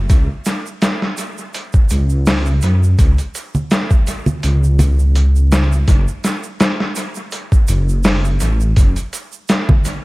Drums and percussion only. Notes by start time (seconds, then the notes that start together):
0.10 kick, closed hi-hat, shaker
0.45 snare, closed hi-hat, shaker
0.66 shaker
0.82 snare, closed hi-hat, shaker
1.02 snare
1.18 closed hi-hat, shaker
1.38 shaker
1.54 closed hi-hat, shaker
1.73 kick, shaker
1.90 closed hi-hat, shaker
2.09 shaker
2.26 snare, open hi-hat, shaker
2.46 shaker
2.62 closed hi-hat, shaker
2.83 shaker
2.99 kick, closed hi-hat, shaker
3.18 closed hi-hat, shaker
3.35 closed hi-hat, shaker
3.55 low conga, shaker
3.71 snare, closed hi-hat, shaker
3.90 kick, shaker
4.07 closed hi-hat, shaker
4.26 low conga, shaker
4.43 closed hi-hat, shaker
4.64 shaker
4.79 closed hi-hat, low conga, shaker
4.99 shaker
5.15 closed hi-hat, shaker
5.35 shaker
5.52 snare, closed hi-hat, shaker
5.72 shaker
5.88 kick, closed hi-hat, shaker
6.08 shaker
6.24 snare, closed hi-hat, shaker
6.43 shaker
6.60 snare, closed hi-hat, shaker
6.80 snare
6.96 closed hi-hat, shaker
7.15 shaker
7.31 closed hi-hat, shaker
7.52 kick, shaker
7.68 closed hi-hat, shaker
7.89 shaker
8.04 snare, open hi-hat, shaker
8.25 shaker
8.40 closed hi-hat, shaker
8.60 shaker
8.76 kick, closed hi-hat, shaker
8.96 closed hi-hat, shaker
9.13 closed hi-hat, shaker
9.32 shaker
9.48 snare, closed hi-hat, shaker
9.69 kick, low conga
9.85 closed hi-hat, shaker